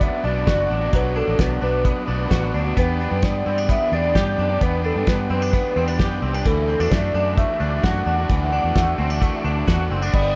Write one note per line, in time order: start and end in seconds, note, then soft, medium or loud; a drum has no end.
0.00 0.22 F#3 soft
0.00 0.92 F#3 medium
0.00 0.24 B3 medium
0.00 1.39 B3 medium
0.00 0.23 D4 soft
0.00 0.25 D4 medium
0.00 0.25 F#4 soft
0.00 0.24 E5 loud
0.00 kick medium
0.00 closed hi-hat medium
0.23 0.44 B1 medium
0.23 0.46 F#3 soft
0.23 0.47 B3 medium
0.23 0.70 D4 medium
0.23 0.48 D4 soft
0.23 0.48 F#4 medium
0.23 0.96 D5 medium
0.47 0.67 F#1 medium
0.47 0.82 F#3 soft
0.47 0.82 B3 soft
0.47 0.81 D4 soft
0.47 2.30 F#4 medium
0.47 0.80 F#4 medium
0.47 kick medium
0.47 snare medium
0.47 closed hi-hat medium
0.70 0.90 A1 medium
0.70 1.15 D4 soft
0.81 0.92 B3 soft
0.81 0.93 D4 soft
0.81 0.93 F#4 medium
0.93 1.23 B1 medium
0.93 1.27 B2 medium
0.93 2.77 F#3 medium
0.93 1.28 F#3 medium
0.93 1.28 B3 medium
0.93 1.27 D4 medium
0.93 1.26 F#4 medium
0.93 1.16 B4 medium
0.93 kick loud
0.93 closed hi-hat medium
1.16 1.61 D4 medium
1.16 1.42 A4 medium
1.27 1.37 A1 medium
1.27 1.61 B3 soft
1.27 1.62 D4 soft
1.27 1.62 F#4 soft
1.39 1.59 B1 medium
1.39 1.84 B3 soft
1.39 1.63 B4 medium
1.39 kick loud
1.39 snare medium
1.39 closed hi-hat medium
1.61 1.91 B1 medium
1.61 2.06 F#3 medium
1.61 2.08 B3 medium
1.61 2.07 D4 medium
1.61 2.09 D4 soft
1.61 2.09 F#4 medium
1.61 2.51 B4 medium
1.85 2.76 B3 medium
1.85 kick loud
1.85 closed hi-hat medium
2.07 2.28 B1 medium
2.07 2.29 F#3 medium
2.07 2.30 B3 medium
2.07 2.54 D4 medium
2.07 2.31 D4 medium
2.07 2.32 F#4 medium
2.30 2.50 A1 medium
2.30 2.65 F#3 medium
2.30 2.66 B3 medium
2.30 2.65 D4 medium
2.30 2.82 F#4 medium
2.30 2.63 F#4 medium
2.30 kick medium
2.30 snare medium
2.30 closed hi-hat medium
2.54 2.74 D2 medium
2.54 3.00 D4 soft
2.64 2.76 B3 soft
2.64 2.76 D4 soft
2.64 2.77 F#4 soft
2.76 3.06 E2 medium
2.76 3.11 E3 medium
2.76 3.11 B3 medium
2.76 3.22 B3 medium
2.76 3.11 D4 medium
2.76 3.09 G4 medium
2.76 3.25 B4 medium
2.76 kick medium
2.76 closed hi-hat medium
3.00 3.46 D4 medium
3.10 3.21 F#2 medium
3.10 3.45 B3 soft
3.10 3.46 D4 soft
3.10 3.45 G4 medium
3.23 3.43 G2 medium
3.23 3.68 B3 soft
3.23 3.70 D5 loud
3.23 kick loud
3.23 snare medium
3.23 closed hi-hat medium
3.45 3.75 G2 medium
3.45 3.91 E3 soft
3.45 3.91 B3 soft
3.45 3.58 C4 soft
3.45 3.93 D4 medium
3.45 3.93 G4 medium
3.58 3.91 D4 soft
3.69 4.60 B3 soft
3.69 3.96 E5 medium
3.69 kick loud
3.69 closed hi-hat medium
3.92 4.12 E2 medium
3.92 4.13 E3 soft
3.92 4.15 B3 soft
3.92 4.38 D4 medium
3.92 4.16 D4 medium
3.92 4.16 G4 medium
3.92 4.64 D5 medium
4.15 4.35 G2 medium
4.15 4.49 E3 medium
4.15 4.50 B3 medium
4.15 4.49 D4 medium
4.15 5.98 G4 medium
4.15 4.47 G4 medium
4.15 kick medium
4.15 snare medium
4.15 closed hi-hat medium
4.38 4.58 F#2 medium
4.38 4.84 D4 soft
4.49 4.61 B3 soft
4.49 4.62 D4 soft
4.49 4.61 G4 medium
4.61 4.91 E2 loud
4.61 4.96 E3 medium
4.61 5.06 B3 medium
4.61 4.96 B3 medium
4.61 4.96 D4 medium
4.61 4.94 G4 medium
4.61 4.85 B4 medium
4.61 kick medium
4.61 closed hi-hat medium
4.84 5.30 D4 soft
4.84 5.06 A4 medium
4.95 5.05 G2 medium
4.95 5.30 B3 soft
4.95 5.31 D4 soft
4.95 5.30 G4 soft
5.07 5.27 G2 medium
5.07 5.52 B3 soft
5.07 5.29 B4 medium
5.07 kick loud
5.07 snare loud
5.07 closed hi-hat medium
5.30 5.59 F#2 medium
5.30 5.75 E3 soft
5.30 5.75 B3 soft
5.30 5.42 C4 soft
5.30 5.77 D4 soft
5.30 5.77 G4 medium
5.30 6.19 B4 medium
5.42 5.76 D4 soft
5.53 6.50 B3 medium
5.53 kick medium
5.53 closed hi-hat medium
5.75 5.99 E2 medium
5.75 5.97 E3 medium
5.75 5.99 B3 medium
5.75 5.88 C4 medium
5.75 5.99 D4 medium
5.75 6.00 G4 medium
5.88 6.22 D4 soft
5.99 6.19 F#2 medium
5.99 6.33 E3 medium
5.99 6.34 B3 medium
5.99 6.33 D4 medium
5.99 6.50 G4 medium
5.99 6.32 G4 medium
5.99 kick loud
5.99 snare loud
5.99 closed hi-hat medium
6.22 6.42 C2 medium
6.22 6.34 C4 soft
6.33 6.46 B3 soft
6.33 6.50 D4 soft
6.33 6.45 D4 medium
6.33 6.45 G4 medium
6.45 6.75 D2 loud
6.45 6.80 D3 medium
6.45 6.80 E3 medium
6.45 8.28 E3 medium
6.45 6.80 A3 medium
6.45 6.80 D4 medium
6.45 6.78 F#4 medium
6.45 6.92 A4 medium
6.45 kick medium
6.45 closed hi-hat medium
6.69 6.80 C4 medium
6.79 6.89 E2 medium
6.79 7.14 A3 soft
6.79 7.13 D4 soft
6.79 7.15 D4 soft
6.79 7.14 F#4 soft
6.91 7.11 F#2 medium
6.91 7.36 A3 medium
6.91 7.37 D5 loud
6.91 kick medium
6.91 snare loud
6.91 closed hi-hat medium
7.14 7.44 F#2 medium
7.14 7.59 E3 medium
7.14 7.60 A3 medium
7.14 7.60 D4 medium
7.14 7.62 D4 medium
7.14 7.62 F#4 medium
7.38 8.74 A3 medium
7.38 7.85 E5 medium
7.38 kick loud
7.38 closed hi-hat medium
7.60 7.80 D2 medium
7.60 7.82 E3 medium
7.60 7.83 A3 medium
7.60 8.06 D4 medium
7.60 7.84 D4 medium
7.60 7.85 F#4 medium
7.83 8.03 F#2 medium
7.83 8.18 E3 medium
7.83 8.18 A3 medium
7.83 8.18 D4 medium
7.83 9.66 F#4 medium
7.83 8.17 F#4 medium
7.83 8.29 F#5 loud
7.83 kick medium
7.83 snare medium
7.83 closed hi-hat medium
8.06 8.26 E2 medium
8.06 8.52 D4 medium
8.18 8.29 A3 soft
8.18 8.30 D4 soft
8.18 8.29 F#4 medium
8.29 8.59 D2 loud
8.29 8.64 D3 medium
8.29 10.14 E3 medium
8.29 8.64 E3 medium
8.29 8.65 A3 medium
8.29 8.64 D4 medium
8.29 8.62 F#4 medium
8.29 9.64 F#5 medium
8.29 kick loud
8.29 closed hi-hat medium
8.52 8.98 D4 medium
8.64 8.74 E2 medium
8.64 8.97 A3 soft
8.64 8.98 D4 soft
8.64 8.98 F#4 soft
8.75 8.95 E2 medium
8.75 9.20 A3 medium
8.75 kick loud
8.75 snare medium
8.75 closed hi-hat medium
8.97 9.28 D2 medium
8.97 9.42 E3 medium
8.97 9.44 A3 medium
8.97 9.10 C4 soft
8.97 9.46 D4 medium
8.97 9.46 F#4 medium
9.10 9.43 D4 soft
9.21 10.13 A3 medium
9.21 kick medium
9.21 closed hi-hat medium
9.44 9.64 D2 medium
9.44 9.65 E3 soft
9.44 9.66 A3 medium
9.44 9.90 D4 medium
9.44 9.68 D4 medium
9.44 9.68 F#4 medium
9.66 9.87 E2 medium
9.66 10.02 E3 medium
9.66 10.02 A3 medium
9.66 10.02 D4 medium
9.66 10.18 F#4 medium
9.66 10.00 F#4 medium
9.66 kick medium
9.66 snare medium
9.66 closed hi-hat medium
9.90 10.10 F#1 medium
9.90 10.02 C4 soft
10.02 10.13 A3 medium
10.02 10.18 D4 soft
10.02 10.14 D4 medium
10.02 10.13 F#4 medium
10.13 10.35 G1 medium
10.13 10.34 G3 medium
10.13 10.35 B3 medium
10.13 10.35 D4 medium
10.13 10.35 G4 medium
10.13 10.35 D5 loud
10.13 kick loud
10.13 crash medium